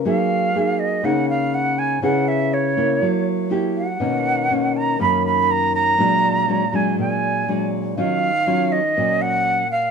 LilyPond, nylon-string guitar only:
\new Staff \with { instrumentName = "Nylon-string guitar" } { \time 4/4 \key ees \minor \tempo 4 = 121 << { <bes ees' aes'>4 <bes ees' aes'>4 <bes ees' aes'>2 | <ces' fes' aes'>4. <bes fes'>4. <bes fes' g'>8 r8 | <dis ais cis'>4 <dis ais cis'>4 <dis ais cis'>2 | <fis aes d'>4 <fis aes d'>8 <fis aes d'>4. <fis aes d'>4 |
<ges des' f'>8 r8 <ges des' f'>8 r8 <ges des'>4. r8 | } \\ { ges2 des2 | des2 ges2 | b,2 fis,2 | bes,2 bes,2 |
ees2 bes,2 | } >> }